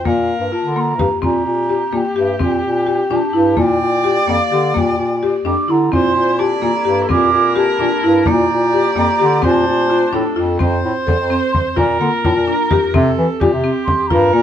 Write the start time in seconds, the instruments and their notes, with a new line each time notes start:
0.04 bass clarinet A#2, marimba A#3, viola A#4, flute F5, frame drum
0.40 bass clarinet G2
0.52 marimba F4, flute A5
0.63 bass clarinet D3
0.76 marimba A#3, flute C6
0.80 flute A#5
0.98 bass clarinet G2, marimba G4, frame drum
1.22 bass clarinet A#2, marimba C4, viola G4, flute A#5, frame drum
1.45 bass clarinet A#2, frame drum
1.69 marimba G4, frame drum
1.92 bass clarinet A#2, marimba A#3, flute G5, frame drum
2.16 bass clarinet G2, marimba G4, flute E5
2.39 bass clarinet A#2, marimba C4, frame drum
2.44 flute G5
2.64 bass clarinet A#2, frame drum
2.87 marimba G4, frame drum
3.10 bass clarinet A#2, marimba D4, frame drum
3.15 flute A5
3.33 bass clarinet G2, marimba E4
3.57 bass clarinet A#2, marimba A#3, viola D5, frame drum
3.62 flute G5
3.81 bass clarinet A#2, frame drum
4.04 marimba G4, frame drum
4.27 bass clarinet F2, marimba A#3, flute F5, frame drum
4.51 bass clarinet D3, marimba G4
4.74 bass clarinet A#2, marimba A#3, flute G5, frame drum
4.98 bass clarinet A#2, frame drum
5.23 marimba G4, frame drum
5.44 bass clarinet F2, marimba D4, flute D6, frame drum
5.68 bass clarinet D3, marimba E4, flute A#5
5.92 bass clarinet A#2, woodwind section D3 A#3 E4, marimba C4, viola C5, flute C6, frame drum
6.15 bass clarinet A#2, frame drum
6.39 marimba G4, viola D5, flute A5, frame drum
6.62 bass clarinet A#2, marimba A#3, flute A#5, frame drum
6.85 bass clarinet G2, marimba G4
7.03 viola A4
7.09 bass clarinet A#2, marimba C4, viola A#4, flute D6, frame drum
7.32 bass clarinet A#2, frame drum
7.56 marimba G4, flute A5, frame drum
7.79 bass clarinet A#2, marimba D4, frame drum
8.03 bass clarinet G2, marimba E4
8.26 bass clarinet A#2, woodwind section F3 G4, marimba A#3, viola D5, frame drum
8.30 flute A#5
8.51 bass clarinet A#2
8.73 marimba G4, frame drum
8.96 bass clarinet F2, marimba A#3, flute A#5, frame drum
9.20 bass clarinet D3, marimba G4
9.42 bass clarinet A#2, woodwind section C3 D4, marimba C4, viola C5, flute A5, frame drum
9.46 woodwind section A3
9.67 bass clarinet A#2, frame drum
9.89 marimba F4
10.13 bass clarinet A2, marimba D4, viola A4, frame drum
10.36 bass clarinet F2, marimba F4
10.59 bass clarinet F2, marimba C4, viola C5, frame drum
10.84 bass clarinet A2
11.07 bass clarinet E2, marimba A4, frame drum
11.19 bass clarinet F2
11.30 marimba C4
11.52 flute C6, frame drum
11.76 bass clarinet A#2, marimba F4, viola A#4, flute A#5, frame drum
12.00 bass clarinet D3, marimba A#3
12.24 bass clarinet A2, marimba F4, flute A5, frame drum
12.36 bass clarinet A#2
12.47 marimba D4, flute A#5
12.71 marimba G4, frame drum
12.93 bass clarinet C3, marimba C4, viola A4, frame drum
13.18 bass clarinet E3
13.40 bass clarinet A#2, viola G4, marimba G4, frame drum
13.53 bass clarinet C3
13.64 marimba C4
13.85 flute C6, frame drum
14.07 bass clarinet G2, marimba F4, viola A#4, flute A#5, frame drum
14.33 bass clarinet A#2, marimba A#3